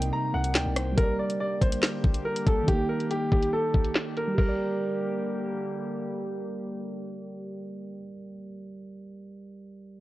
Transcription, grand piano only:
0.13 0.30 A#5 medium
0.34 0.52 F#5 medium
0.55 0.95 G5 medium
0.97 1.15 A#4 loud
1.19 1.37 D5 medium
1.40 1.58 D5 medium
1.61 2.21 C5 medium
2.25 2.43 A#4 medium
2.47 2.64 A4 medium
2.68 2.86 G4 loud
2.89 3.07 A#4 medium
3.11 3.28 G4 medium
3.32 3.50 G4 medium
3.53 4.13 A4 medium
4.17 4.35 A#4 medium
4.38 5.62 A#4 medium

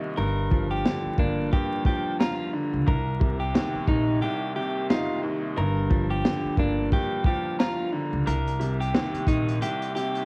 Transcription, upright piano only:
0.00 0.18 C2 medium
0.00 0.19 D#2 medium
0.00 0.18 C3 medium
0.00 0.18 D#3 medium
0.00 0.18 D#4 loud
0.17 1.51 G2 medium
0.51 1.86 F3 medium
0.85 2.52 D3 medium
1.19 2.87 A#3 medium
1.53 2.88 G2 medium
1.88 2.88 F3 medium
2.20 2.87 A#5 loud
2.53 2.87 D3 medium
2.86 4.20 C2 medium
3.20 4.54 C3 medium
3.54 5.22 D#2 medium
3.88 5.57 D#3 medium
4.22 5.57 C2 medium
4.56 5.57 C3 medium
4.90 5.57 D#4 loud
5.23 5.57 D#2 medium
5.57 6.91 G2 medium
5.90 7.25 F3 medium
6.25 7.91 D3 medium
6.58 8.27 A#3 medium
6.93 8.27 G2 medium
7.27 8.27 F3 medium
7.59 8.27 A#5 loud
7.92 8.26 D3 medium
8.26 9.60 C2 medium
8.60 9.94 C3 medium
8.94 10.25 D#2 medium
9.28 10.25 D#3 medium
9.62 10.25 C2 medium
9.95 10.25 C3 medium

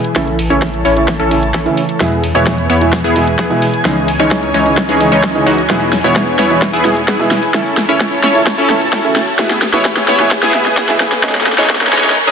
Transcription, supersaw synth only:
0.16 0.38 C#4 medium
0.16 0.38 E4 medium
0.16 0.38 A4 medium
0.50 0.82 C#4 medium
0.50 0.82 E4 medium
0.50 0.82 C#5 medium
0.85 1.07 C#4 medium
0.85 1.07 E4 medium
0.85 1.07 C#5 loud
1.20 1.42 C#4 medium
1.20 1.42 E4 medium
1.20 1.42 A4 loud
1.54 1.68 C#4 medium
1.54 1.68 E4 medium
1.54 1.68 A4 loud
2.00 2.23 B3 medium
2.00 2.23 E4 medium
2.00 2.23 G#4 medium
2.35 2.67 B3 medium
2.35 2.67 E4 medium
2.35 2.67 C#5 medium
2.70 2.92 B3 medium
2.70 2.92 E4 medium
2.70 2.92 C#5 loud
3.04 3.27 B3 medium
3.04 3.27 E4 medium
3.04 3.27 G#4 loud
3.39 3.53 B3 medium
3.39 3.53 E4 medium
3.39 3.53 G#4 loud
3.85 4.08 E3 medium
3.85 4.08 G#3 medium
3.85 4.08 C#4 medium
3.85 4.08 D#4 medium
3.85 4.08 G#4 medium
4.20 4.51 E3 medium
4.20 4.51 G#3 medium
4.20 4.51 C#4 medium
4.20 4.51 D#4 medium
4.20 4.51 C#5 medium
4.54 4.77 E3 medium
4.54 4.77 G#3 medium
4.54 4.77 C#4 medium
4.54 4.77 D#4 medium
4.54 4.77 C#5 loud
4.89 5.10 E3 loud
4.89 5.10 G#3 medium
4.89 5.10 C#4 medium
4.89 5.10 D#4 medium
4.89 5.10 G#4 loud
5.12 5.44 E3 medium
5.12 5.44 G#3 medium
5.12 5.44 C#4 medium
5.12 5.44 D#4 medium
5.12 5.44 C#5 medium
5.47 5.61 E3 loud
5.47 5.61 G#3 medium
5.47 5.61 C#4 medium
5.47 5.61 D#4 medium
5.47 5.61 F#4 loud
5.70 5.92 B3 medium
5.70 5.92 E4 medium
5.70 5.92 G#4 medium
6.04 6.36 B3 medium
6.04 6.36 E4 medium
6.04 6.36 C#5 medium
6.39 6.61 B3 medium
6.39 6.61 E4 medium
6.39 6.61 C#5 loud
6.73 6.96 B3 medium
6.73 6.96 E4 medium
6.73 6.96 G#4 loud
7.08 7.22 B3 medium
7.08 7.22 E4 medium
7.08 7.22 G#4 loud
7.54 7.77 C#4 medium
7.54 7.77 E4 medium
7.54 7.77 A4 medium
7.89 8.21 C#4 medium
7.89 8.21 E4 medium
7.89 8.21 C#5 medium
8.23 8.46 C#4 medium
8.23 8.46 E4 medium
8.23 8.46 C#5 loud
8.58 8.81 C#4 loud
8.58 8.81 E4 medium
8.58 8.81 A4 loud
8.93 9.07 C#4 medium
8.93 9.07 E4 medium
8.93 9.07 A4 loud
9.39 9.61 B3 medium
9.39 9.61 E4 medium
9.39 9.61 G#4 medium
9.74 10.05 B3 medium
9.74 10.05 E4 medium
9.74 10.05 C#5 loud
10.08 10.31 B3 medium
10.08 10.31 E4 medium
10.08 10.31 C#5 loud
10.43 10.65 B3 medium
10.43 10.65 E4 medium
10.43 10.65 G#4 loud
10.77 10.91 B3 medium
10.77 10.91 E4 medium
10.77 10.91 G#4 loud
11.23 11.46 E3 medium
11.23 11.46 G#3 medium
11.23 11.46 C#4 medium
11.23 11.46 D#4 medium
11.23 11.46 G#4 medium
11.58 11.90 E3 medium
11.58 11.90 G#3 medium
11.58 11.90 C#4 medium
11.58 11.90 D#4 medium
11.58 11.90 C#5 loud
11.93 12.15 E3 medium
11.93 12.15 G#3 medium
11.93 12.15 C#4 medium
11.93 12.15 D#4 medium
11.93 12.15 C#5 loud
12.27 12.31 E3 medium
12.27 12.31 G#3 medium
12.27 12.31 C#4 medium
12.27 12.31 D#4 medium
12.27 12.31 G#4 loud

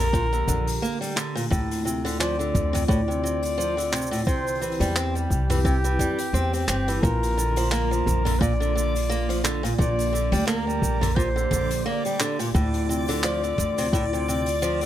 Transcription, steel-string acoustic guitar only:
0.13 0.24 A#2 loud
0.33 0.46 D3 medium
0.48 0.66 D3 medium
0.82 1.00 A#3 medium
1.01 1.15 G3 medium
1.16 1.34 D3 loud
1.35 1.44 A#2 loud
1.50 1.84 A2 loud
1.85 2.03 C3 medium
2.05 2.18 D3 loud
2.20 2.37 F3 loud
2.39 2.72 D3 medium
2.73 2.82 C3 medium
2.88 3.00 A2 loud
3.08 3.22 C3 medium
3.23 3.42 C3 medium
3.58 3.75 F3 loud
3.77 3.91 D3 medium
3.92 4.10 C3 loud
4.11 4.20 A2 medium
4.27 4.60 C3 loud
4.61 4.79 E3 medium
4.81 4.94 G3 medium
4.96 5.13 C4 loud
5.15 5.48 G3 medium
5.50 5.59 E3 medium
5.65 5.76 C3 loud
5.84 5.98 E3 medium
6.00 6.17 G3 medium
6.34 6.51 C4 loud
6.54 6.67 C4 medium
6.69 6.86 C4 medium
6.88 7.01 E3 medium
7.03 7.36 A#2 medium
7.37 7.55 D3 medium
7.57 7.70 F3 loud
7.72 7.89 A#3 medium
7.91 8.24 F3 medium
8.25 8.34 D3 medium
8.41 8.52 A#2 loud
8.60 8.74 D3 medium
8.75 8.94 D3 medium
9.10 9.27 A#3 loud
9.29 9.43 F3 medium
9.44 9.61 D3 loud
9.63 9.72 A#2 medium
9.78 10.12 A#2 medium
10.13 10.30 D3 medium
10.32 10.46 G3 medium
10.47 10.65 A#3 loud
10.67 11.00 G3 medium
11.01 11.10 D3 medium
11.16 11.27 A#2 loud
11.36 11.50 D3 medium
11.51 11.70 D3 medium
11.86 12.03 A#3 loud
12.06 12.19 G3 medium
12.20 12.38 D3 loud
12.39 12.48 A#2 medium
12.54 12.87 A2 loud
12.89 13.06 C3 medium
13.09 13.22 D3 loud
13.24 13.41 F3 loud
13.44 13.76 D3 medium
13.78 13.86 C3 medium
13.93 14.04 A2 loud
14.13 14.26 C3 medium
14.28 14.46 C3 medium
14.62 14.79 F3 loud
14.82 14.86 D3 medium

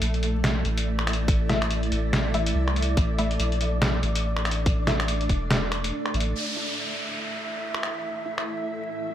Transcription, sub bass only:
0.01 0.64 A#1 loud
0.65 1.90 A1 loud
1.92 2.54 A1 medium
2.55 2.96 C2 loud
2.97 3.38 A1 loud
3.39 4.02 A#1 medium
4.03 5.28 A1 loud
5.29 5.92 E1 loud
6.14 6.34 A1 loud

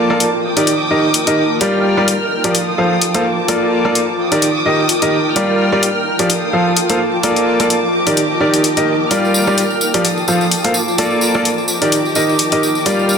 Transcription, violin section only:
0.00 0.43 A#3 medium
0.00 0.43 A5 medium
0.00 0.42 D6 medium
0.43 1.60 G5 medium
0.43 1.60 D6 medium
0.43 1.60 D#6 medium
1.61 2.54 A#4 medium
1.61 2.54 G5 medium
1.61 2.54 F6 medium
2.55 3.24 A4 medium
2.55 3.24 F5 medium
2.55 3.24 D#6 medium
3.25 4.18 A#3 medium
3.25 4.18 A5 medium
3.25 4.18 D6 medium
4.19 6.28 G5 medium
4.19 5.35 D6 medium
4.19 5.35 D#6 medium
5.36 6.29 A#4 medium
5.36 6.29 F6 medium
6.30 6.99 A4 medium
6.30 6.99 F5 medium
6.30 6.99 D#6 medium
7.00 7.93 A#3 medium
7.00 7.93 A5 medium
7.00 9.09 D6 medium
7.94 9.10 G4 medium
7.94 9.10 D#5 medium
9.11 10.04 A#4 medium
9.11 10.04 G5 medium
9.11 10.04 F6 medium
10.05 10.74 A4 medium
10.05 10.74 F5 medium
10.05 10.74 D#6 medium
10.75 11.68 A#3 medium
10.75 11.68 A5 medium
10.75 11.67 D6 medium
11.69 12.85 G4 medium
11.69 12.85 D#5 medium
11.69 12.85 D6 medium
12.86 13.18 A#4 medium
12.86 13.18 G5 medium
12.86 13.18 F6 medium

